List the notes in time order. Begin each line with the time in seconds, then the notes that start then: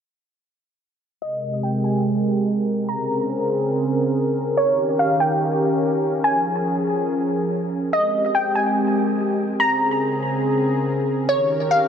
1.22 C3 G#3 G4 A#4 D#5
1.63 G5
1.84 G#5
2.89 C#3 C4 G#4 A#5
4.57 D#3 C#4 G4 C#5
4.99 F5
5.20 G5
6.24 F3 G#4 G#5
7.93 G#3 C4 G4 D#5
8.35 G5
8.55 G#5
9.60 C#3 C4 G#4 A#5
11.29 D#3 C#4 G4 A#4 C#5
11.71 F5